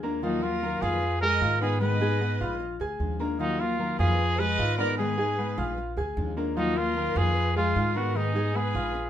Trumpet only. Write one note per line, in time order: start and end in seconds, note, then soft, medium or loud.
0.23 0.44 D#4 medium
0.43 0.83 F4 loud
0.82 1.21 G#4 loud
1.21 1.58 A#4 loud
1.62 1.80 G#4 medium
1.81 2.56 B4 loud
3.40 3.62 D#4 loud
3.60 3.98 F4 loud
3.99 4.41 G#4 loud
4.39 4.78 B4 loud
4.78 4.97 A#4 loud
4.98 5.74 G#4 medium
6.57 6.79 D#4 loud
6.77 7.19 F4 loud
7.17 7.56 G#4 loud
7.57 7.99 F4 loud
7.97 8.17 F#4 medium
8.16 8.58 D#4 medium
8.56 9.10 G#4 medium